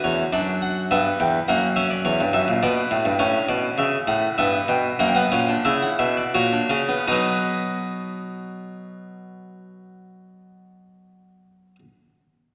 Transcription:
Already playing: F#4
0.04 E2 C#5
0.33 F#2 D4 D5
0.62 F#5
0.91 G2 B3 E5
1.20 E2 G5
1.48 F#2 A#3 F#5
1.76 C#4 E5
1.90 D5
2.05 E2 C#5
2.21 G2
2.33 F#2 E5
2.48 A#2
2.63 B2 B3 D5
2.91 A2
3.05 G2
3.19 A2 C#4 C#5
3.49 B2 D5
3.78 C#3 E5
4.07 A2 F#5
4.38 G2 B3 E5
4.68 B2 G5
4.99 F#2 A#3 F#5
5.07 G5
5.15 B3 F#5
5.32 A#2 C#4
5.49 D4
5.65 C#3 E4 E5
5.82 F#5
5.99 B2 E5
6.17 D5
6.34 A#2 F#4 C#5
6.52 D4
6.70 C#3 C#4
6.89 B3
7.07 B2 F#3 B3 D#4 D#5

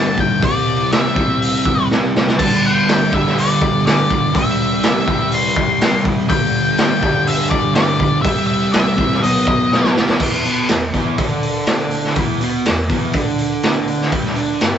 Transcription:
Already playing: G2 D3 G3 A5
0.18 G5, kick
0.40 C3 G3, kick, open hi-hat
0.44 C4 D5
0.92 E5, snare, open hi-hat
1.14 G3 C4, kick
1.19 C3
1.42 open hi-hat
1.65 kick
1.91 snare
2.16 snare
2.28 snare
2.38 G2 D3 A5, kick, crash
2.43 G3
2.66 G5
2.89 snare, open hi-hat
3.11 D3 G3 E5, kick
3.16 G2
3.27 snare
3.38 D5, open hi-hat
3.62 kick
3.86 D5, snare, open hi-hat
4.11 kick
4.32 C3 G3 E5, kick, open hi-hat
4.38 C4
4.83 E5, snare, open hi-hat
5.06 G3 C4, kick
5.11 C3
5.32 C6, open hi-hat
5.56 kick
5.81 snare, open hi-hat
6.05 kick
6.27 G2 D3 G5, kick, open hi-hat
6.32 G3
6.78 G5, snare, open hi-hat
7.00 D3 G3, kick
7.06 G2
7.27 E5, open hi-hat
7.50 D5, kick
7.75 D5, snare, open hi-hat
8.00 kick
8.22 C3 G3 E5, kick, open hi-hat
8.28 C4
8.47 E5
8.73 E5, snare, open hi-hat
8.96 G3 C4, kick
9.01 C3
9.12 snare
9.20 B2 F#3 D#5, open hi-hat
9.25 B3
9.47 kick
9.72 snare
9.84 snare
9.94 F#3 B3, snare
9.99 B2
10.09 snare
10.20 E2 E3, kick, crash
10.44 B2 B3, open hi-hat
10.68 E2, snare, open hi-hat
10.93 E2 E3, kick, open hi-hat
11.18 D3 D4, kick, open hi-hat
11.43 open hi-hat
11.66 snare, open hi-hat
11.91 open hi-hat
12.04 snare
12.16 E2 E3, kick, open hi-hat
12.40 B2 B3, open hi-hat
12.66 E2, snare, open hi-hat
12.90 E2 E3, kick, open hi-hat
13.13 D3 D4, kick, open hi-hat
13.39 open hi-hat
13.63 snare, open hi-hat
13.88 open hi-hat
14.01 snare
14.12 G2 G3, kick, open hi-hat
14.25 snare
14.35 D3 D4, open hi-hat
14.60 G2, snare, open hi-hat

